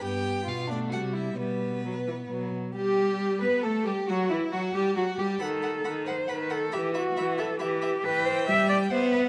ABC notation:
X:1
M:3/4
L:1/8
Q:1/4=136
K:Em
V:1 name="Violin"
g2 =f d ^f e | B4- B z | G3 B A G | F E F G F G |
b b b b b b | b b b b b b | g4 e2 |]
V:2 name="Violin"
G2 =F D ^F E | B,4- B, z | G3 B A G | F E F G F G |
f f f f f f | e e e e e e | g2 g2 f2 |]
V:3 name="Cello"
G,,2 B,,2 C,2 | B,,4 B,, z | G3 B A G | F E F G F G |
A3 c B A | G F2 A G2 | B c e d c B |]
V:4 name="Viola" clef=bass
B,2 B, A, G,2 | G,2 F, E, F,2 | G,3 B, A, G, | F, E, F, G, F, G, |
^D,2 D,2 D,2 | E,2 E,2 E,2 | E,2 G,2 B,2 |]